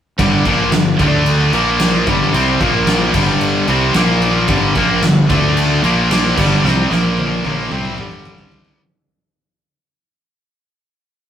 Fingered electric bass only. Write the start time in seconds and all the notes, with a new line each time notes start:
0.19 G1
0.45 A#1
0.72 G1
0.99 D2
1.52 A#1
2.07 G1
2.33 C2
2.60 A#1
3.14 G1
3.68 C2
3.95 A#1
4.48 G1
4.75 A#1
5.03 G1
5.30 D2
5.83 A#1
6.37 G1
6.64 C2
6.91 A#1
7.45 A#1
7.71 C2
7.99 G1